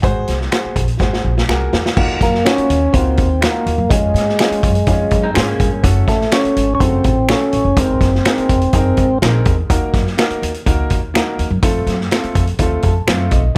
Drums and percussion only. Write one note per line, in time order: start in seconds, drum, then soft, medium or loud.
0.03 kick loud
0.03 closed hi-hat loud
0.28 snare soft
0.28 closed hi-hat medium
0.41 snare soft
0.52 finger snap medium
0.52 snare loud
0.52 closed hi-hat medium
0.76 kick loud
0.76 closed hi-hat medium
0.88 closed hi-hat soft
1.00 kick medium
1.00 snare medium
1.13 snare medium
1.38 snare medium
1.49 finger snap loud
1.49 snare medium
1.73 snare loud
1.86 snare loud
1.97 kick loud
1.97 crash loud
2.21 kick loud
2.21 snare soft
2.21 closed hi-hat medium
2.34 snare soft
2.46 finger snap loud
2.46 snare loud
2.46 closed hi-hat medium
2.58 closed hi-hat medium
2.70 closed hi-hat medium
2.94 kick loud
2.94 closed hi-hat medium
3.17 kick loud
3.17 closed hi-hat medium
3.42 finger snap loud
3.42 snare loud
3.42 closed hi-hat medium
3.67 closed hi-hat medium
3.91 kick loud
3.91 closed hi-hat loud
4.16 snare soft
4.16 closed hi-hat medium
4.29 snare soft
4.39 finger snap loud
4.39 snare loud
4.39 closed hi-hat medium
4.52 closed hi-hat medium
4.63 kick loud
4.63 closed hi-hat medium
4.75 closed hi-hat medium
4.87 kick loud
4.87 closed hi-hat medium
5.11 kick medium
5.11 closed hi-hat medium
5.35 finger snap loud
5.35 snare loud
5.35 closed hi-hat medium
5.60 kick loud
5.60 closed hi-hat medium
5.84 kick loud
5.84 closed hi-hat loud
6.08 kick loud
6.08 snare soft
6.08 closed hi-hat medium
6.21 snare soft
6.31 finger snap loud
6.31 snare loud
6.31 closed hi-hat medium
6.45 closed hi-hat medium
6.57 closed hi-hat medium
6.80 kick loud
6.80 closed hi-hat medium
7.04 kick medium
7.04 closed hi-hat medium
7.29 finger snap loud
7.29 snare loud
7.29 closed hi-hat medium
7.53 closed hi-hat medium
7.77 kick loud
7.77 closed hi-hat loud
8.01 kick loud
8.01 snare soft
8.01 closed hi-hat medium
8.15 snare soft
8.25 finger snap loud
8.25 snare loud
8.25 closed hi-hat medium
8.38 closed hi-hat medium
8.49 kick loud
8.49 closed hi-hat medium
8.61 closed hi-hat medium
8.73 kick loud
8.73 closed hi-hat medium
8.97 kick medium
8.97 closed hi-hat medium
9.22 finger snap loud
9.22 snare loud
9.22 closed hi-hat medium
9.45 kick loud
9.45 closed hi-hat medium
9.70 kick loud
9.70 closed hi-hat loud
9.94 kick loud
9.94 snare soft
9.94 closed hi-hat medium
10.07 snare soft
10.18 finger snap loud
10.18 snare loud
10.18 closed hi-hat medium
10.30 closed hi-hat medium
10.43 closed hi-hat medium
10.54 closed hi-hat medium
10.66 kick loud
10.66 closed hi-hat medium
10.90 kick medium
10.90 closed hi-hat medium
11.15 finger snap loud
11.15 snare loud
11.15 closed hi-hat medium
11.39 closed hi-hat medium
11.62 kick loud
11.62 closed hi-hat loud
11.87 snare soft
11.87 closed hi-hat medium
12.01 snare soft
12.11 finger snap loud
12.11 snare loud
12.11 closed hi-hat medium
12.24 closed hi-hat soft
12.35 kick loud
12.35 closed hi-hat medium
12.47 closed hi-hat medium
12.59 kick loud
12.59 closed hi-hat medium
12.82 kick medium
12.82 closed hi-hat medium
13.07 finger snap loud
13.07 snare loud
13.07 closed hi-hat medium
13.31 kick loud
13.31 closed hi-hat medium